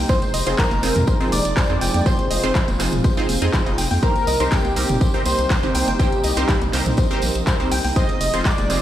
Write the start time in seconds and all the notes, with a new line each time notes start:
Already playing: D#4
0.09 F3 G#3 C4 D#4 F4 G#4 C5 C6, kick, closed hi-hat, tambourine
0.22 closed hi-hat, tambourine
0.34 F1 D#5, open hi-hat, tambourine
0.46 F1 C4 D#4 F4 G#4 C5 C6, closed hi-hat, tambourine
0.58 A#4 A#5, kick, clap, closed hi-hat, tambourine
0.71 F1, closed hi-hat, tambourine, high conga
0.83 F1 C4 D#4 F4 G#4 C5, open hi-hat, tambourine
0.96 F2, closed hi-hat, mid tom, tambourine
1.07 C5, kick, closed hi-hat, tambourine
1.20 C4 D#4 F4 G#4 C5, tambourine
1.32 F1 D5 D6, open hi-hat, tambourine, high conga
1.45 F1, closed hi-hat, tambourine
1.57 C5, kick, clap, closed hi-hat, tambourine
1.70 F2 C4 D#4 F4 G#4 C5, tambourine
1.81 F1 G5, open hi-hat, tambourine
1.94 F2 G5, closed hi-hat, tambourine, high conga
2.06 C4 D#4 F4 G#4 C5 C6, kick, closed hi-hat, tambourine
2.19 closed hi-hat, tambourine
2.31 F1 D#5, open hi-hat, tambourine
2.43 F1 C4 D#4 F4 G#4 C5 C6, closed hi-hat, tambourine
2.55 kick, clap, closed hi-hat, tambourine
2.68 F1, closed hi-hat, tambourine, high conga
2.80 F1 C4 D#4 F4 G#4 C5, clap, open hi-hat, tambourine
2.92 F1, closed hi-hat, mid tom, tambourine
3.04 C5, kick, closed hi-hat, tambourine
3.17 C4 D#4 F4 G#4 C5, closed hi-hat, tambourine
3.29 F1, open hi-hat, tambourine, high conga
3.42 F2 C4 D#4 F4 G#4 D#5, closed hi-hat, tambourine
3.53 C5, kick, clap, closed hi-hat, tambourine
3.66 F1 C4 D#4 F4 G#4 D#5, closed hi-hat, tambourine
3.78 F1 G5, open hi-hat, tambourine
3.91 F2 G5, open hi-hat, tambourine, high conga
4.02 G3 A#3 C4 D#4 G4 A#4 C5 A#5, kick, closed hi-hat, tambourine
4.16 closed hi-hat, tambourine
4.27 C2 D#5, open hi-hat, tambourine
4.40 C2 C4 D#4 G4 A#4 C5 C6, closed hi-hat, tambourine
4.51 G4 G5, kick, clap, closed hi-hat, tambourine
4.65 C2, closed hi-hat, tambourine, high conga
4.76 C2 C4 D#4 G4 A#4 C5, open hi-hat, tambourine
4.89 G1, closed hi-hat, mid tom, tambourine
5.01 C5, kick, closed hi-hat, tambourine
5.14 C4 D#4 G4 A#4 C5, tambourine
5.25 C2 C5 C6, open hi-hat, tambourine, high conga
5.39 C2, closed hi-hat, tambourine
5.50 C5, kick, clap, closed hi-hat, tambourine
5.63 G1 C4 D#4 G4 A#4 C5, tambourine
5.75 C2 G5, open hi-hat, tambourine
5.87 G1 G5, closed hi-hat, tambourine, high conga
5.99 C4 D#4 G4 A#4 C5 G5, kick, closed hi-hat, tambourine
6.12 closed hi-hat, tambourine
6.23 C2 D#5, open hi-hat, tambourine
6.37 C2 C4 D#4 G4 A#4 C5 C6, closed hi-hat, tambourine
6.48 kick, clap, closed hi-hat, tambourine
6.62 C2, closed hi-hat, tambourine, high conga
6.73 C2 C4 D#4 G4 A#4 C5, clap, open hi-hat, tambourine
6.86 C2, closed hi-hat, mid tom, tambourine
6.97 C5, kick, closed hi-hat, tambourine
7.11 C4 D#4 G4 A#4 C5, tambourine
7.22 A#1, open hi-hat, tambourine, high conga
7.35 A#1, closed hi-hat, tambourine
7.47 C5, kick, clap, closed hi-hat, tambourine
7.60 C2 C4 D#4 G4 A#4 C5, tambourine
7.71 C2 G5, open hi-hat, tambourine
7.84 C2 G5, open hi-hat, tambourine, high conga
7.96 C4 D#4 F4 G#4 C5 D#5 D#6, kick, closed hi-hat, tambourine
8.09 closed hi-hat, tambourine
8.21 F1 D#5, open hi-hat, tambourine
8.34 F1 C4 D#4 F4 G#4 C5 C6, closed hi-hat, tambourine
8.45 D5 D6, kick, clap, closed hi-hat, tambourine
8.58 F1, closed hi-hat, tambourine, high conga
8.70 F1 C4 D#4 F4 G#4 C5, open hi-hat, tambourine